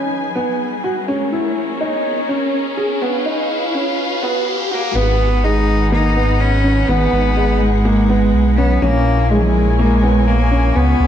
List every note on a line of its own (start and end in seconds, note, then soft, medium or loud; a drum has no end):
0.00 0.80 G#1 medium
0.00 0.24 C#4 medium
0.00 1.04 D#4 medium
0.00 4.91 G#4 medium
0.00 1.04 B4 medium
0.00 1.06 G#5 medium
0.00 riser medium
0.35 0.72 B3 medium
0.84 1.02 F#4 medium
1.08 2.97 A#1 medium
1.08 1.27 C#4 medium
1.08 4.92 C#4 medium
1.08 3.00 A#4 medium
1.08 3.00 C#5 medium
1.32 1.69 E4 medium
1.81 2.17 D#4 medium
2.29 2.66 C#4 medium
2.77 2.96 G#4 medium
3.02 3.21 C#2 medium
3.02 3.20 B3 medium
3.02 4.94 B4 medium
3.02 4.93 F5 medium
3.26 4.46 C#2 medium
3.26 3.62 D#4 medium
3.74 4.11 C#4 medium
4.22 4.59 B3 medium
4.47 4.91 F2 medium
4.71 4.98 A#3 medium
4.71 4.89 F#4 medium
4.95 6.84 G#1 loud
4.95 5.32 B3 medium
4.95 5.46 B3 loud
4.95 8.78 D#4 medium
4.95 8.78 G#4 medium
4.95 8.79 B4 medium
4.95 8.78 F#5 medium
5.44 5.80 G#3 medium
5.44 5.92 D#4 medium
5.92 6.10 A#3 medium
5.92 6.42 D#4 loud
6.16 6.53 B3 medium
6.40 6.90 C#4 medium
6.64 6.83 C#4 medium
6.88 7.07 G#1 medium
6.88 7.62 B3 loud
6.88 7.25 B3 medium
7.13 8.34 G#1 medium
7.37 7.74 G#3 medium
7.61 8.59 G#3 loud
7.85 8.04 A#3 medium
8.09 8.46 B3 medium
8.34 8.78 B1 medium
8.58 8.84 B3 loud
8.58 8.76 C#4 medium
8.82 10.71 A#1 loud
8.82 9.33 A#3 loud
8.82 9.19 C#4 loud
8.82 10.74 E4 medium
8.82 10.74 A#4 medium
8.82 11.07 C#5 medium
8.82 11.07 G#5 medium
9.31 9.68 G#3 medium
9.31 9.40 G#3 medium
9.39 9.46 F#3 medium
9.45 9.79 G#3 medium
9.79 10.29 G#3 medium
9.79 9.98 A#3 medium
10.03 10.40 B3 medium
10.27 10.77 A#3 medium
10.51 10.70 C#4 medium
10.76 10.95 C#2 medium
10.76 11.07 B3 loud
10.76 11.07 B3 medium
10.76 11.07 F4 medium
10.76 11.07 B4 medium
11.00 11.07 C#2 medium